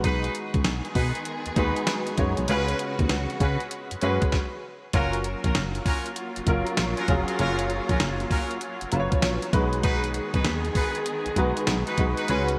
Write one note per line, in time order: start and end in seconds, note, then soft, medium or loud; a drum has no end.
0.00 0.73 G#3 medium
0.00 0.73 D#4 medium
0.00 0.33 D#4 medium
0.00 0.74 F#4 medium
0.00 0.33 F#4 medium
0.00 0.33 G#4 medium
0.00 0.74 B4 medium
0.00 kick loud
0.00 closed hi-hat medium
0.04 0.30 B1 loud
0.04 2.47 D#3 medium
0.04 4.29 B3 medium
0.04 2.47 G#4 medium
0.04 0.33 B4 loud
0.24 closed hi-hat medium
0.35 closed hi-hat medium
0.54 0.63 C#2 medium
0.54 kick medium
0.54 closed hi-hat soft
0.64 0.82 B1 medium
0.64 snare loud
0.64 closed hi-hat medium
0.85 closed hi-hat soft
0.95 1.12 B2 loud
0.95 1.18 D#4 medium
0.95 1.18 F#4 medium
0.95 1.18 G#4 medium
0.95 1.18 B4 medium
0.95 kick medium
0.95 open hi-hat medium
1.15 closed hi-hat medium
1.25 closed hi-hat medium
1.46 1.51 D#2 soft
1.46 closed hi-hat medium
1.56 1.73 D#2 loud
1.56 2.04 G#3 medium
1.56 1.79 D#4 medium
1.56 2.04 D#4 medium
1.56 1.79 F#4 medium
1.56 2.04 F#4 medium
1.56 1.80 G#4 medium
1.56 1.80 B4 medium
1.56 2.04 B4 medium
1.56 kick medium
1.56 closed hi-hat medium
1.76 closed hi-hat medium
1.87 snare loud
1.87 closed hi-hat medium
2.07 closed hi-hat medium
2.18 2.35 F#2 medium
2.18 2.42 G#3 medium
2.18 2.43 D#4 medium
2.18 2.43 F#4 medium
2.18 2.43 C#5 medium
2.18 kick loud
2.18 closed hi-hat medium
2.37 2.47 B1 medium
2.37 closed hi-hat medium
2.48 2.74 C#2 loud
2.48 4.31 C#3 medium
2.48 3.37 G#3 medium
2.48 2.77 C#4 medium
2.48 3.37 C#4 medium
2.48 2.58 F4 medium
2.48 2.78 F#4 medium
2.48 4.31 F#4 medium
2.48 2.78 G#4 medium
2.48 2.78 B4 loud
2.48 3.37 B4 loud
2.48 closed hi-hat medium
2.56 3.40 F#4 medium
2.68 closed hi-hat medium
2.79 closed hi-hat medium
2.99 3.08 D#2 medium
2.99 kick medium
2.99 closed hi-hat soft
3.09 3.27 C#2 loud
3.09 snare loud
3.09 closed hi-hat medium
3.30 closed hi-hat soft
3.40 3.57 C#3 loud
3.40 3.63 C#4 medium
3.40 3.63 F#4 medium
3.40 3.63 G#4 medium
3.40 3.63 B4 medium
3.40 kick loud
3.40 closed hi-hat medium
3.60 closed hi-hat soft
3.71 closed hi-hat medium
3.91 3.96 F#2 medium
3.91 closed hi-hat medium
4.01 4.19 F#2 loud
4.01 4.33 G#3 medium
4.01 4.24 C#4 medium
4.01 4.33 C#4 medium
4.01 4.25 F#4 medium
4.01 4.33 F#4 medium
4.01 4.25 G#4 medium
4.01 4.25 B4 medium
4.01 4.33 B4 medium
4.01 closed hi-hat medium
4.22 kick loud
4.22 closed hi-hat medium
4.32 kick loud
4.32 snare medium
4.93 5.36 F#1 loud
4.93 9.49 F#3 medium
4.93 5.82 F#3 medium
4.93 9.49 A#3 medium
4.93 5.16 C#4 loud
4.93 5.82 C#4 medium
4.93 9.49 F4 medium
4.93 5.17 F4 medium
4.93 5.82 F4 medium
4.93 5.17 F#4 medium
4.93 5.17 A#4 loud
4.93 5.82 A#4 medium
4.93 kick loud
4.93 closed hi-hat medium
5.13 closed hi-hat medium
5.24 closed hi-hat medium
5.44 5.53 A#1 medium
5.44 5.60 C#4 medium
5.44 5.60 F4 medium
5.44 5.60 F#4 medium
5.44 5.60 A#4 medium
5.44 kick medium
5.44 closed hi-hat soft
5.55 5.81 F#1 loud
5.55 snare loud
5.55 closed hi-hat medium
5.75 closed hi-hat soft
5.86 6.08 C#4 medium
5.86 6.08 F4 medium
5.86 6.09 F#4 medium
5.86 6.09 A#4 medium
5.86 kick loud
5.86 open hi-hat medium
6.06 closed hi-hat medium
6.16 closed hi-hat medium
6.36 6.41 F#1 soft
6.36 closed hi-hat medium
6.47 6.64 F#1 loud
6.47 6.94 F#3 medium
6.47 6.94 C#4 medium
6.47 6.94 F4 medium
6.47 6.94 A#4 medium
6.47 kick medium
6.47 closed hi-hat medium
6.67 closed hi-hat medium
6.77 6.95 A#1 loud
6.77 snare loud
6.77 closed hi-hat medium
6.97 7.13 C#4 medium
6.97 7.13 F4 medium
6.97 7.13 F#4 medium
6.97 7.13 A#4 medium
6.97 closed hi-hat medium
7.08 7.25 F1 medium
7.08 7.33 F#3 medium
7.08 7.33 C#4 medium
7.08 7.33 F4 medium
7.08 7.33 G#4 medium
7.08 kick loud
7.08 closed hi-hat medium
7.28 7.38 C#4 medium
7.28 7.38 F4 medium
7.28 7.38 F#4 medium
7.28 7.38 A#4 medium
7.28 closed hi-hat medium
7.39 7.81 F#1 loud
7.39 8.27 F#3 medium
7.39 7.61 C#4 medium
7.39 8.27 C#4 medium
7.39 7.62 F4 medium
7.39 8.27 F4 medium
7.39 7.62 F#4 medium
7.39 7.62 A#4 loud
7.39 8.27 C#5 loud
7.39 closed hi-hat medium
7.59 closed hi-hat medium
7.70 closed hi-hat medium
7.89 7.98 A#1 medium
7.89 8.05 C#4 medium
7.89 8.05 F4 medium
7.89 8.05 F#4 medium
7.89 8.05 A#4 medium
7.89 kick medium
7.89 closed hi-hat soft
8.00 8.26 F#1 medium
8.00 snare loud
8.00 closed hi-hat medium
8.20 closed hi-hat soft
8.30 8.53 C#4 medium
8.30 8.53 F4 medium
8.30 8.53 F#4 medium
8.30 8.53 A#4 medium
8.30 kick medium
8.30 open hi-hat medium
8.51 closed hi-hat medium
8.61 closed hi-hat medium
8.81 8.86 F#1 soft
8.81 closed hi-hat medium
8.92 9.09 F#1 loud
8.92 9.38 F#3 medium
8.92 9.39 C#4 medium
8.92 9.39 F4 medium
8.92 9.01 B4 medium
8.92 closed hi-hat medium
9.00 9.42 C#5 medium
9.12 kick loud
9.12 closed hi-hat medium
9.22 9.39 A#1 loud
9.22 snare loud
9.22 closed hi-hat medium
9.42 closed hi-hat medium
9.53 10.21 B1 loud
9.53 12.26 D#3 medium
9.53 10.53 G#3 medium
9.53 12.26 B3 medium
9.53 10.53 D#4 medium
9.53 10.53 F#4 medium
9.53 12.26 G#4 medium
9.53 10.53 B4 loud
9.53 kick loud
9.53 closed hi-hat medium
9.73 closed hi-hat medium
9.83 10.06 D#4 loud
9.83 10.06 F#4 medium
9.83 10.06 G#4 medium
9.83 10.06 B4 loud
9.83 kick loud
9.83 closed hi-hat medium
10.04 closed hi-hat medium
10.14 closed hi-hat medium
10.34 10.43 B1 medium
10.34 10.50 D#4 medium
10.34 10.50 F#4 medium
10.34 10.50 G#4 medium
10.34 10.50 B4 medium
10.34 kick medium
10.34 closed hi-hat soft
10.44 10.71 D#2 loud
10.44 snare loud
10.44 closed hi-hat medium
10.65 closed hi-hat soft
10.75 10.98 D#4 medium
10.75 10.98 F#4 medium
10.75 10.98 G#4 medium
10.75 10.98 B4 medium
10.75 kick loud
10.75 open hi-hat medium
10.95 closed hi-hat medium
11.06 closed hi-hat medium
11.26 11.31 B1 medium
11.26 closed hi-hat medium
11.36 11.53 B1 loud
11.36 11.83 G#3 medium
11.36 11.84 D#4 medium
11.36 11.84 F#4 medium
11.36 11.84 B4 medium
11.36 kick medium
11.36 closed hi-hat medium
11.57 closed hi-hat medium
11.67 11.84 B1 loud
11.67 snare loud
11.67 closed hi-hat medium
11.87 12.03 D#4 medium
11.87 12.03 F#4 medium
11.87 12.03 G#4 medium
11.87 12.03 B4 medium
11.87 closed hi-hat medium
11.98 12.15 B1 loud
11.98 12.22 G#3 medium
11.98 12.22 D#4 medium
11.98 12.23 F#4 medium
11.98 12.23 B4 medium
11.98 kick loud
11.98 closed hi-hat medium
12.17 12.33 D#4 medium
12.17 12.27 F#4 medium
12.17 12.27 G#4 medium
12.17 12.28 B4 medium
12.17 closed hi-hat medium
12.27 12.59 C#2 loud
12.27 12.59 C#3 medium
12.27 12.59 F#3 medium
12.27 12.59 G#3 medium
12.27 12.59 B3 medium
12.27 12.51 C#4 loud
12.27 12.59 C#4 medium
12.27 12.51 F#4 medium
12.27 12.59 F#4 medium
12.27 12.51 G#4 medium
12.27 12.51 B4 loud
12.27 12.59 B4 loud
12.27 closed hi-hat medium
12.48 closed hi-hat medium